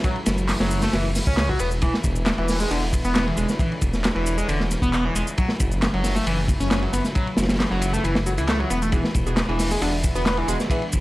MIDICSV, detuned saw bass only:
0, 0, Header, 1, 2, 480
1, 0, Start_track
1, 0, Key_signature, 3, "minor"
1, 0, Tempo, 444444
1, 44, Time_signature, 4, 2, 24, 8
1, 11884, End_track
2, 0, Start_track
2, 0, Title_t, "Detuned saw bass"
2, 0, Program_c, 0, 39
2, 291, Note_on_c, 0, 30, 101
2, 583, Note_off_c, 0, 30, 0
2, 653, Note_on_c, 0, 30, 90
2, 942, Note_off_c, 0, 30, 0
2, 1008, Note_on_c, 0, 30, 83
2, 1301, Note_off_c, 0, 30, 0
2, 1373, Note_on_c, 0, 37, 106
2, 1662, Note_off_c, 0, 37, 0
2, 1729, Note_on_c, 0, 28, 79
2, 2022, Note_off_c, 0, 28, 0
2, 2204, Note_on_c, 0, 28, 94
2, 2500, Note_off_c, 0, 28, 0
2, 2572, Note_on_c, 0, 28, 89
2, 2861, Note_off_c, 0, 28, 0
2, 2928, Note_on_c, 0, 28, 82
2, 3221, Note_off_c, 0, 28, 0
2, 3290, Note_on_c, 0, 28, 89
2, 3581, Note_off_c, 0, 28, 0
2, 3647, Note_on_c, 0, 28, 98
2, 3727, Note_off_c, 0, 28, 0
2, 4126, Note_on_c, 0, 28, 98
2, 4420, Note_off_c, 0, 28, 0
2, 4491, Note_on_c, 0, 28, 92
2, 4781, Note_off_c, 0, 28, 0
2, 4843, Note_on_c, 0, 28, 90
2, 5139, Note_off_c, 0, 28, 0
2, 5207, Note_on_c, 0, 28, 93
2, 5499, Note_off_c, 0, 28, 0
2, 5565, Note_on_c, 0, 28, 95
2, 5646, Note_off_c, 0, 28, 0
2, 6051, Note_on_c, 0, 30, 101
2, 6343, Note_off_c, 0, 30, 0
2, 6412, Note_on_c, 0, 30, 88
2, 6701, Note_off_c, 0, 30, 0
2, 6765, Note_on_c, 0, 30, 92
2, 7060, Note_off_c, 0, 30, 0
2, 7130, Note_on_c, 0, 30, 92
2, 7420, Note_off_c, 0, 30, 0
2, 7487, Note_on_c, 0, 30, 95
2, 7567, Note_off_c, 0, 30, 0
2, 7966, Note_on_c, 0, 30, 94
2, 8261, Note_off_c, 0, 30, 0
2, 8331, Note_on_c, 0, 30, 86
2, 8621, Note_off_c, 0, 30, 0
2, 8686, Note_on_c, 0, 30, 88
2, 9051, Note_on_c, 0, 37, 94
2, 9067, Note_off_c, 0, 30, 0
2, 9341, Note_off_c, 0, 37, 0
2, 9405, Note_on_c, 0, 28, 92
2, 9700, Note_off_c, 0, 28, 0
2, 9881, Note_on_c, 0, 28, 100
2, 10178, Note_off_c, 0, 28, 0
2, 10246, Note_on_c, 0, 28, 90
2, 10538, Note_off_c, 0, 28, 0
2, 10602, Note_on_c, 0, 28, 90
2, 10898, Note_off_c, 0, 28, 0
2, 10966, Note_on_c, 0, 28, 91
2, 11258, Note_off_c, 0, 28, 0
2, 11321, Note_on_c, 0, 28, 92
2, 11404, Note_off_c, 0, 28, 0
2, 11809, Note_on_c, 0, 28, 101
2, 11884, Note_off_c, 0, 28, 0
2, 11884, End_track
0, 0, End_of_file